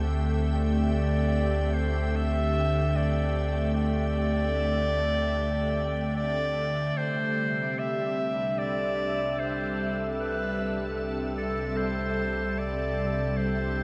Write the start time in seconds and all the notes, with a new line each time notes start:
Already playing: D2 D3 A3 C4 G4 E5 G5
0.56 D5
1.74 C5
2.16 E5
2.96 D5
3.74 D5
6.17 D5
6.93 C2 C3 E5
6.97 D3 A3 C5
7.09 G3
7.72 D4
7.79 E5
8.12 A4
8.58 D5
9.39 C5
10.21 B4
11.38 A4
11.77 C5
12.58 D5
13.33 E4 C5